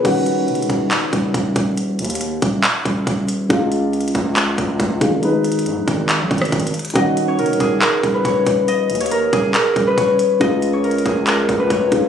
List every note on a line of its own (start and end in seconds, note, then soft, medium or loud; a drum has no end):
0.00 3.45 D#3 medium
0.00 1.24 G#4 medium
0.00 1.56 B4 medium
0.00 1.53 C#5 medium
0.00 0.10 D#5 loud
0.04 0.50 D#1 loud
0.04 3.46 C#4 medium
0.04 3.47 F#4 medium
0.04 kick loud
0.04 closed hi-hat medium
0.04 crash loud
0.26 closed hi-hat medium
0.48 0.60 F#1 loud
0.48 closed hi-hat soft
0.55 0.69 D#1 loud
0.55 closed hi-hat medium
0.62 closed hi-hat medium
0.70 0.90 D#1 loud
0.70 kick medium
0.70 closed hi-hat medium
0.91 clap loud
0.91 closed hi-hat medium
1.13 1.33 D#1 loud
1.13 kick medium
1.13 closed hi-hat medium
1.34 1.55 D#1 loud
1.34 kick loud
1.34 closed hi-hat medium
1.56 2.01 D#1 loud
1.56 kick medium
1.56 closed hi-hat medium
1.77 closed hi-hat medium
1.99 2.40 D#2 loud
1.99 closed hi-hat medium
1.99 open hi-hat medium
2.05 closed hi-hat medium
2.10 closed hi-hat medium
2.15 closed hi-hat medium
2.21 closed hi-hat medium
2.42 2.63 D#1 loud
2.42 kick medium
2.42 closed hi-hat medium
2.64 clap loud
2.64 closed hi-hat medium
2.85 3.06 D#1 loud
2.85 kick medium
2.85 closed hi-hat medium
3.07 3.48 D#1 loud
3.07 kick loud
3.07 closed hi-hat medium
3.28 closed hi-hat medium
3.49 4.12 C#2 loud
3.49 4.98 C#3 medium
3.49 4.99 G#3 medium
3.49 4.99 F4 medium
3.49 kick loud
3.49 closed hi-hat medium
3.72 closed hi-hat medium
3.93 closed hi-hat soft
4.01 closed hi-hat medium
4.08 closed hi-hat medium
4.15 4.56 C#2 loud
4.15 kick medium
4.15 closed hi-hat medium
4.36 clap loud
4.36 closed hi-hat medium
4.58 4.79 C#2 loud
4.58 kick medium
4.58 closed hi-hat medium
4.80 5.00 C#2 loud
4.80 kick loud
4.80 closed hi-hat medium
5.00 5.68 G#1 loud
5.00 5.22 C#3 medium
5.00 5.20 G#3 soft
5.00 5.23 F4 medium
5.00 kick loud
5.00 closed hi-hat medium
5.21 6.91 G#3 medium
5.21 6.92 D#4 medium
5.21 6.93 B4 medium
5.21 closed hi-hat medium
5.44 closed hi-hat medium
5.52 closed hi-hat medium
5.59 closed hi-hat medium
5.66 5.78 G#2 loud
5.66 closed hi-hat medium
5.77 5.87 G#1 loud
5.88 6.21 G#1 loud
5.88 kick medium
5.88 closed hi-hat medium
6.09 clap loud
6.09 closed hi-hat medium
6.20 6.30 B1 loud
6.31 6.51 G#1 loud
6.31 kick medium
6.31 closed hi-hat soft
6.38 cross-stick medium
6.38 closed hi-hat soft
6.45 closed hi-hat medium
6.52 6.73 G#1 loud
6.52 kick loud
6.52 closed hi-hat medium
6.60 closed hi-hat medium
6.67 closed hi-hat medium
6.74 closed hi-hat medium
6.79 closed hi-hat medium
6.85 closed hi-hat medium
6.90 10.36 D#3 medium
6.90 closed hi-hat medium
6.95 7.40 D#1 loud
6.95 10.37 C#4 medium
6.95 10.37 F#4 medium
6.95 8.68 D#5 loud
6.95 kick loud
6.95 closed hi-hat medium
7.17 closed hi-hat medium
7.28 8.25 C#5 medium
7.39 7.51 F#1 loud
7.39 7.81 A#4 medium
7.39 closed hi-hat soft
7.46 7.60 D#1 loud
7.46 closed hi-hat medium
7.53 closed hi-hat medium
7.60 7.81 D#1 loud
7.60 9.33 G#4 medium
7.60 kick medium
7.60 closed hi-hat medium
7.82 8.20 A#4 medium
7.82 clap loud
7.82 closed hi-hat medium
8.03 8.24 D#1 loud
8.03 kick medium
8.03 closed hi-hat medium
8.14 9.17 B4 medium
8.25 8.46 D#1 loud
8.25 9.00 C#5 medium
8.25 kick loud
8.25 closed hi-hat medium
8.46 8.91 D#1 loud
8.46 kick loud
8.46 closed hi-hat loud
8.68 10.40 D#5 loud
8.68 closed hi-hat medium
8.90 9.31 D#2 loud
8.90 closed hi-hat medium
8.90 open hi-hat medium
8.95 closed hi-hat medium
9.01 9.97 C#5 medium
9.01 closed hi-hat medium
9.06 closed hi-hat medium
9.11 9.54 A#4 medium
9.11 closed hi-hat medium
9.33 9.54 D#1 loud
9.33 11.05 G#4 medium
9.33 kick medium
9.33 closed hi-hat medium
9.54 9.93 A#4 medium
9.54 clap loud
9.54 closed hi-hat medium
9.76 9.97 D#1 loud
9.76 kick medium
9.76 closed hi-hat medium
9.87 10.90 B4 medium
9.97 10.39 D#1 loud
9.97 10.73 C#5 medium
9.97 kick loud
9.97 closed hi-hat medium
10.19 closed hi-hat medium
10.40 11.03 C#2 loud
10.40 11.88 C#3 medium
10.40 11.89 G#3 medium
10.40 11.90 F4 medium
10.40 12.09 D#5 loud
10.40 kick loud
10.40 closed hi-hat medium
10.62 closed hi-hat medium
10.73 11.70 C#5 medium
10.84 11.27 A#4 medium
10.84 closed hi-hat soft
10.91 closed hi-hat medium
10.98 closed hi-hat medium
11.05 11.47 C#2 loud
11.05 12.09 G#4 medium
11.05 kick medium
11.05 closed hi-hat medium
11.27 11.66 A#4 medium
11.27 clap loud
11.27 closed hi-hat medium
11.49 11.69 C#2 loud
11.49 kick medium
11.49 closed hi-hat medium
11.60 12.09 B4 medium
11.70 11.91 C#2 loud
11.70 12.09 C#5 medium
11.70 kick loud
11.70 closed hi-hat medium
11.91 12.09 C#2 loud
11.91 12.09 C#3 medium
11.91 12.09 G#3 soft
11.91 12.09 F4 medium
11.91 kick medium
11.91 closed hi-hat loud